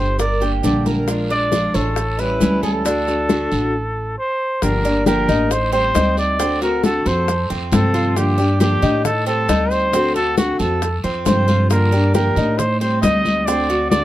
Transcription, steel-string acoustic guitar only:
0.00 0.19 A3 soft
0.00 0.18 D4 soft
0.00 0.18 G4 medium
0.19 muted steel-string acoustic guitar stroke medium
0.41 0.63 A#3 soft
0.41 0.63 D4 soft
0.41 0.62 G4 medium
0.63 1.07 D3 medium
0.63 1.07 G3 medium
0.63 1.07 A#3 medium
0.63 1.07 D4 medium
0.63 1.08 G4 medium
1.08 1.29 F3 medium
1.08 1.29 G#3 medium
1.08 1.30 D4 medium
1.08 1.29 F4 medium
1.30 1.52 G#3 soft
1.30 1.52 D4 soft
1.30 1.51 F4 soft
1.53 1.74 F3 medium
1.53 1.74 G#3 medium
1.53 1.74 D4 medium
1.53 1.73 F4 medium
1.74 1.96 G#3 soft
1.74 1.96 D4 soft
1.74 1.96 F4 medium
1.97 muted steel-string acoustic guitar stroke medium
2.19 2.40 G3 soft
2.19 2.41 C#4 soft
2.19 2.40 E4 soft
2.41 2.84 E3 medium
2.41 2.85 G3 medium
2.41 2.85 C#4 medium
2.41 2.85 E4 medium
2.85 3.06 D3 medium
2.85 3.07 A3 medium
2.85 3.07 D4 medium
2.85 3.06 F#4 medium
3.07 3.28 A3 soft
3.07 3.29 D4 soft
3.07 3.29 F#4 soft
3.29 3.51 D3 medium
3.29 3.51 A3 medium
3.29 3.51 D4 medium
3.29 3.50 F#4 medium
3.51 3.73 A3 soft
3.51 3.73 D4 soft
3.51 3.73 F#4 soft
4.62 4.83 D3 medium
4.62 4.84 F3 medium
4.62 4.84 A#3 medium
4.62 4.84 D4 medium
4.62 4.83 G4 medium
4.84 5.06 A#3 soft
4.84 5.06 D4 soft
4.84 5.06 G4 soft
5.06 5.28 D3 medium
5.06 5.28 F3 medium
5.06 5.28 A#3 medium
5.06 5.28 D4 medium
5.06 5.28 G4 medium
5.29 5.50 A#3 soft
5.29 5.51 D4 soft
5.29 5.50 G4 soft
5.51 muted steel-string acoustic guitar stroke medium
5.73 5.95 G3 soft
5.73 5.94 C4 soft
5.96 6.39 G3 medium
5.96 6.39 C4 medium
6.39 6.61 D3 medium
6.39 6.61 A3 medium
6.39 6.61 C4 medium
6.39 6.61 F#4 medium
6.62 6.84 A3 soft
6.62 6.83 C4 soft
6.62 6.83 F#4 medium
6.84 7.05 D3 medium
6.84 7.06 A3 medium
6.84 7.05 C4 medium
6.84 7.05 F#4 medium
7.06 7.28 A3 soft
7.06 7.27 C4 soft
7.06 7.27 F#4 medium
7.28 muted steel-string acoustic guitar stroke medium
7.50 7.72 A3 soft
7.50 7.72 C4 soft
7.50 7.71 F4 soft
7.72 8.16 C3 medium
7.72 8.16 F3 medium
7.72 8.16 A3 medium
7.72 8.16 C4 medium
7.72 8.16 F4 medium
8.16 8.38 D3 medium
8.16 8.38 F3 medium
8.16 8.38 A#3 medium
8.16 8.38 D4 medium
8.16 8.38 G4 medium
8.39 8.60 A#3 soft
8.39 8.60 D4 medium
8.39 8.60 G4 medium
8.61 8.82 D3 medium
8.61 8.82 F3 medium
8.61 8.82 A#3 medium
8.61 8.82 D4 medium
8.61 8.81 G4 medium
8.83 9.05 A#3 soft
8.83 9.04 D4 medium
8.83 9.04 G4 medium
9.05 muted steel-string acoustic guitar stroke medium
9.27 9.48 G3 soft
9.27 9.48 C4 medium
9.49 9.92 G3 medium
9.49 9.93 C4 medium
9.93 10.14 D3 medium
9.93 10.15 A3 medium
9.93 10.15 C4 medium
9.93 10.14 F#4 medium
10.15 10.37 A3 soft
10.15 10.37 C4 soft
10.15 10.37 F#4 medium
10.37 10.59 D3 medium
10.37 10.59 A3 medium
10.37 10.59 C4 medium
10.37 10.59 F#4 medium
10.60 10.82 A3 soft
10.60 10.82 C4 soft
10.60 10.81 F#4 medium
10.82 muted steel-string acoustic guitar stroke medium
11.04 11.26 A3 soft
11.04 11.26 C4 soft
11.04 11.25 F4 medium
11.27 11.70 C3 medium
11.27 11.70 F3 medium
11.27 11.70 A3 medium
11.27 11.70 C4 medium
11.27 11.70 F4 medium
11.71 11.92 D3 medium
11.71 11.92 F3 medium
11.71 11.92 A#3 medium
11.71 11.92 D4 medium
11.71 11.91 G4 medium
11.93 12.14 A#3 soft
11.93 12.14 D4 soft
11.93 12.14 G4 medium
12.15 12.36 D3 medium
12.15 12.36 F3 medium
12.15 12.36 A#3 medium
12.15 12.36 D4 medium
12.15 12.36 G4 medium
12.37 12.59 A#3 soft
12.37 12.59 D4 soft
12.37 12.58 G4 medium
12.59 muted steel-string acoustic guitar stroke medium
12.81 13.02 G3 soft
12.81 13.02 C4 medium
13.03 13.47 G3 medium
13.03 13.47 C4 medium
13.47 13.69 D3 medium
13.47 13.69 A3 medium
13.47 13.69 C4 medium
13.47 13.68 F#4 medium
13.69 13.91 A3 soft
13.69 13.91 C4 soft
13.69 13.90 F#4 medium
13.92 14.04 D3 medium
13.92 14.04 A3 medium
13.92 14.04 C4 medium
13.92 14.04 F#4 medium

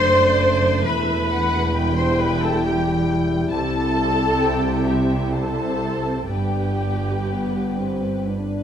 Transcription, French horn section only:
0.00 1.75 A3 medium
0.00 0.81 D4 medium
0.84 6.11 E4 medium
1.75 6.11 G3 medium
6.28 7.17 B3 medium
6.28 7.17 D4 medium
7.29 7.75 B3 medium
7.77 8.28 C4 medium
8.27 8.63 D4 medium

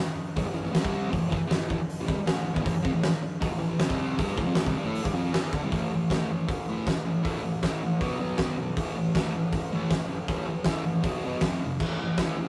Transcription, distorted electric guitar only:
0.15 muted distorted electric guitar stroke medium
0.36 0.45 B2 loud
0.36 0.45 F#3 loud
0.46 0.53 A2 medium
0.46 0.53 E3 medium
0.54 0.63 A2 medium
0.54 0.63 E3 medium
0.64 0.70 A2 medium
0.64 0.71 E3 medium
0.71 0.80 A2 medium
0.71 0.81 E3 loud
0.80 1.10 C3 medium
0.80 1.10 G3 loud
0.80 1.12 C4 loud
1.11 1.27 A2 medium
1.11 1.27 E3 medium
1.29 1.37 A2 medium
1.29 1.40 E3 loud
1.38 muted distorted electric guitar stroke medium
1.47 1.56 C3 loud
1.47 1.57 G3 loud
1.57 1.67 A2 medium
1.57 1.67 E3 medium
1.68 1.77 A2 medium
1.68 1.78 E3 loud
1.78 muted distorted electric guitar stroke medium
2.00 2.06 A2 medium
2.00 2.08 E3 medium
2.07 2.16 C3 loud
2.07 2.17 G3 loud
2.17 muted distorted electric guitar stroke medium
2.26 2.42 A2 medium
2.26 2.42 E3 medium
2.45 2.54 A2 medium
2.45 2.53 E3 medium
2.54 2.61 E3 medium
2.54 2.64 B3 loud
2.62 2.73 A2 loud
2.62 2.74 E3 loud
2.74 muted distorted electric guitar stroke medium
2.82 2.93 F3 medium
2.82 2.93 C4 loud
2.93 3.09 A2 medium
2.93 3.09 E3 medium
3.22 muted distorted electric guitar stroke medium
3.41 3.50 B2 loud
3.41 3.50 F#3 loud
3.50 3.58 A2 medium
3.50 3.58 E3 medium
3.59 3.68 A2 medium
3.59 3.68 E3 medium
3.69 3.78 A2 medium
3.69 3.78 E3 medium
3.79 3.85 A2 loud
3.79 3.86 E3 loud
3.85 4.16 C3 loud
3.85 4.16 G3 loud
3.85 4.17 C4 loud
4.18 4.36 G3 loud
4.18 4.37 D4 loud
4.18 4.37 G4 loud
4.35 4.46 A2 medium
4.35 4.46 E3 medium
4.46 4.56 F3 loud
4.46 4.56 C4 loud
4.56 4.66 A2 medium
4.56 4.66 E3 loud
4.66 4.75 C3 medium
4.66 4.76 G3 medium
4.77 4.85 G3 loud
4.77 4.85 D4 loud
4.85 5.03 A3 loud
4.85 5.04 E4 medium
4.85 5.05 A4 loud
5.03 5.13 G3 medium
5.03 5.13 D4 loud
5.13 5.32 F3 medium
5.13 5.33 C4 loud
5.13 5.33 F4 medium
5.32 5.51 E3 loud
5.32 5.52 B3 loud
5.32 5.52 E4 loud
5.54 5.62 D3 medium
5.54 5.63 A3 loud
5.63 5.71 C3 loud
5.63 5.72 G3 medium
5.71 5.89 A2 medium
5.71 5.90 E3 medium
5.71 5.90 A3 medium
5.94 6.09 A2 medium
5.94 6.09 E3 medium
6.11 6.28 A2 medium
6.11 6.28 E3 medium
6.11 6.29 A3 loud
6.32 6.47 A2 medium
6.32 6.47 E3 medium
6.48 6.65 A2 medium
6.48 6.65 E3 medium
6.69 6.86 A2 medium
6.69 6.86 E3 medium
6.69 6.86 A3 medium
6.88 7.04 A2 medium
6.88 7.03 E3 medium
7.05 7.21 A2 medium
7.05 7.21 E3 medium
7.22 7.41 A2 medium
7.22 7.41 E3 medium
7.22 7.42 A3 loud
7.42 7.60 A2 medium
7.42 7.60 E3 medium
7.62 7.80 A2 medium
7.62 7.81 E3 medium
7.62 7.81 A3 loud
7.83 8.00 A2 medium
7.83 8.00 E3 medium
8.01 8.18 B2 medium
8.01 8.19 F#3 medium
8.01 8.19 B3 loud
8.20 8.37 B2 medium
8.20 8.38 F#3 loud
8.20 8.38 B3 medium
8.39 8.57 B2 medium
8.39 8.56 F#3 loud
8.39 8.57 B3 loud
8.58 8.75 B2 medium
8.58 8.75 F#3 medium
8.77 8.95 A2 medium
8.77 8.94 E3 loud
8.77 8.95 A3 loud
8.96 9.13 A2 medium
8.96 9.13 E3 medium
9.14 9.32 A2 medium
9.14 9.33 E3 medium
9.14 9.33 A3 loud
9.35 9.51 A2 medium
9.35 9.51 E3 medium
9.53 9.70 A2 medium
9.53 9.71 E3 medium
9.72 9.90 A2 medium
9.72 9.90 E3 loud
9.72 9.91 A3 loud
9.91 10.07 A2 medium
9.91 10.08 E3 medium
10.08 10.26 A2 medium
10.08 10.26 E3 medium
10.28 10.45 A2 medium
10.28 10.45 E3 loud
10.28 10.47 A3 loud
10.46 10.63 A2 medium
10.46 10.64 E3 medium
10.64 10.83 A2 medium
10.64 10.83 E3 medium
10.64 10.84 A3 loud
10.84 11.02 A2 medium
10.84 11.02 E3 medium
11.02 11.21 B2 medium
11.02 11.22 F#3 loud
11.02 11.23 B3 loud
11.24 11.41 B2 medium
11.24 11.42 F#3 medium
11.24 11.42 B3 loud
11.44 11.61 F2 medium
11.44 11.61 C3 medium
11.44 11.61 F3 loud
11.64 11.80 F2 medium
11.64 11.80 C3 medium
11.80 11.98 A2 medium
11.80 11.98 E3 loud
11.80 11.99 A3 loud
12.02 12.17 A2 medium
12.02 12.17 E3 medium
12.18 12.36 A2 medium
12.18 12.37 E3 medium
12.18 12.37 A3 loud
12.39 12.48 A2 medium
12.39 12.48 E3 medium

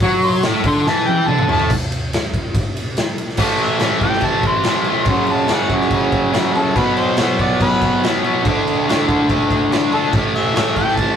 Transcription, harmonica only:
0.24 0.44 C6 loud
0.67 0.87 C6 loud
0.87 1.09 A5 loud
1.07 1.29 G5 loud
1.27 1.48 A5 medium
1.52 1.71 A5 loud
3.62 4.02 E5 medium
4.03 4.27 G5 loud
4.25 4.45 A5 loud
4.47 5.07 C6 loud
5.09 5.33 C6 medium
5.32 5.56 A5 loud
5.55 5.73 F#5 loud
6.56 6.79 A4 loud
6.78 6.97 B4 loud
6.97 7.38 C5 medium
7.41 7.61 D5 medium
7.62 8.02 B4 loud
9.94 10.13 A4 loud
10.36 10.76 E5 medium
10.78 10.97 G5 loud
10.96 11.16 A5 loud

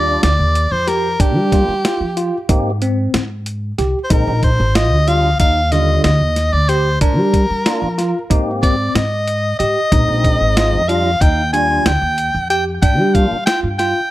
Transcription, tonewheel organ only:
0.00 0.29 G3 medium
0.00 0.29 D4 soft
0.00 0.29 F4 medium
1.52 1.75 A#3 medium
1.52 1.75 D4 medium
1.52 1.75 F4 medium
2.49 2.72 A#3 medium
2.49 2.72 C4 medium
2.49 2.72 G4 medium
4.11 4.33 G#3 medium
4.11 4.33 C4 medium
4.11 4.34 D#4 medium
5.07 5.30 G3 medium
5.07 5.30 D4 medium
5.07 5.30 F4 medium
5.72 6.11 D3 medium
5.72 6.11 G3 medium
5.72 6.11 F4 medium
7.65 7.88 A#3 medium
7.65 7.88 D4 medium
7.65 7.89 F4 medium
8.30 8.75 A#3 medium
8.30 8.76 C4 medium
8.30 8.76 G4 medium
9.92 10.82 G#3 medium
9.92 10.83 C4 medium
9.92 10.83 D#4 medium
10.88 11.11 G3 medium
10.88 11.11 D4 medium
10.88 11.12 F4 medium
11.53 11.92 G3 medium
11.53 11.92 D4 medium
11.53 11.93 F4 medium
13.14 13.37 A#3 medium
13.14 13.38 D4 medium
13.14 13.38 F4 medium

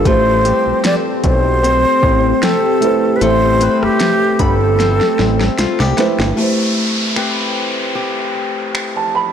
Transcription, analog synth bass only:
0.06 0.53 A1 loud
0.67 0.74 B1 soft
1.24 1.86 B1 loud
2.03 2.34 A1 loud
3.22 3.69 A1 loud
3.83 3.90 G1 soft
4.40 5.01 G1 loud
5.19 5.50 A1 medium
5.59 5.67 C2 soft
5.80 5.94 C2 medium
6.19 6.33 G1 loud

